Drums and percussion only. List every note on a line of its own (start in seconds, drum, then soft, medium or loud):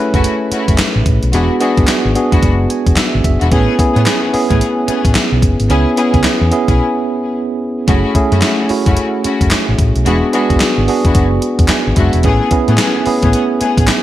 0.14 kick loud
0.14 closed hi-hat soft
0.24 closed hi-hat medium
0.52 closed hi-hat medium
0.68 kick medium
0.68 closed hi-hat medium
0.78 snare loud
0.78 clap loud
0.78 closed hi-hat medium
1.06 kick loud
1.06 closed hi-hat medium
1.23 closed hi-hat soft
1.33 closed hi-hat medium
1.61 closed hi-hat medium
1.77 kick medium
1.77 closed hi-hat soft
1.87 snare loud
1.87 clap medium
1.87 closed hi-hat medium
2.15 closed hi-hat medium
2.32 kick loud
2.32 closed hi-hat medium
2.43 kick loud
2.43 closed hi-hat medium
2.70 closed hi-hat medium
2.87 kick medium
2.87 closed hi-hat medium
2.96 snare loud
2.96 clap loud
2.96 closed hi-hat medium
3.24 kick medium
3.24 closed hi-hat medium
3.41 closed hi-hat soft
3.52 kick loud
3.52 closed hi-hat medium
3.79 kick medium
3.79 closed hi-hat medium
3.96 closed hi-hat soft
4.06 snare loud
4.06 clap medium
4.06 closed hi-hat medium
4.34 open hi-hat medium
4.51 kick medium
4.51 closed hi-hat medium
4.61 closed hi-hat medium
4.88 closed hi-hat medium
5.05 kick medium
5.05 closed hi-hat medium
5.15 snare loud
5.15 clap loud
5.15 closed hi-hat medium
5.42 kick medium
5.42 closed hi-hat medium
5.60 closed hi-hat soft
5.70 closed hi-hat medium
5.97 closed hi-hat medium
6.14 kick loud
6.14 closed hi-hat soft
6.24 snare loud
6.24 clap medium
6.24 closed hi-hat medium
6.52 closed hi-hat medium
6.68 kick loud
6.68 closed hi-hat medium
7.88 kick loud
7.88 closed hi-hat medium
8.15 kick medium
8.15 closed hi-hat medium
8.32 closed hi-hat soft
8.41 snare loud
8.41 clap medium
8.41 closed hi-hat medium
8.69 open hi-hat medium
8.86 kick loud
8.86 closed hi-hat medium
8.97 closed hi-hat medium
9.24 closed hi-hat medium
9.41 kick medium
9.41 closed hi-hat medium
9.51 snare loud
9.51 clap loud
9.51 closed hi-hat medium
9.79 kick loud
9.79 closed hi-hat medium
9.96 closed hi-hat soft
10.06 closed hi-hat medium
10.33 closed hi-hat medium
10.50 kick medium
10.50 closed hi-hat soft
10.60 snare loud
10.60 clap medium
10.60 closed hi-hat medium
10.88 open hi-hat medium
11.05 kick medium
11.05 closed hi-hat medium
11.15 kick loud
11.15 closed hi-hat medium
11.42 closed hi-hat medium
11.59 kick loud
11.59 closed hi-hat medium
11.68 snare loud
11.68 clap loud
11.68 closed hi-hat medium
11.96 kick loud
11.96 closed hi-hat medium
12.13 closed hi-hat soft
12.23 kick loud
12.23 closed hi-hat medium
12.51 kick medium
12.51 closed hi-hat medium
12.68 closed hi-hat soft
12.78 snare loud
12.78 clap medium
12.78 closed hi-hat medium
13.06 open hi-hat medium
13.22 kick medium
13.22 closed hi-hat soft
13.33 closed hi-hat medium
13.61 closed hi-hat medium
13.78 kick loud
13.78 closed hi-hat medium
13.87 snare loud
13.87 clap loud
13.87 closed hi-hat medium